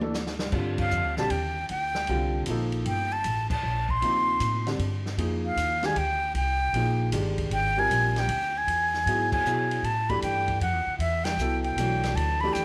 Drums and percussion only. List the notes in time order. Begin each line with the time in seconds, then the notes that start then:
0.01 high tom
0.14 snare, hi-hat pedal
0.26 snare
0.39 snare
0.52 kick, crash
0.78 kick, crash
0.91 hi-hat pedal
1.17 snare
1.30 ride
1.69 ride
1.94 snare
2.07 ride
2.46 hi-hat pedal, ride
2.72 ride
2.86 ride
3.24 hi-hat pedal, ride
3.50 kick, crash
3.89 kick
4.02 ride
4.40 hi-hat pedal, ride
4.67 snare, ride
4.79 ride
5.06 snare
5.18 ride
5.57 hi-hat pedal, ride
5.83 snare, ride
5.96 ride
6.35 ride
6.74 ride
7.12 hi-hat pedal, ride
7.38 kick, ride
7.51 ride
7.91 hi-hat pedal, ride
8.16 snare, ride
8.29 ride
8.68 ride
8.94 snare
9.07 ride
9.32 kick, crash
9.46 hi-hat pedal
9.71 ride
9.84 ride
10.09 kick, ride
10.22 hi-hat pedal, ride
10.48 kick, ride
10.61 ride
11.00 ride
11.25 snare, ride
11.39 hi-hat pedal
11.64 ride
11.78 hi-hat pedal, ride
12.03 snare, ride
12.17 ride
12.55 hi-hat pedal, ride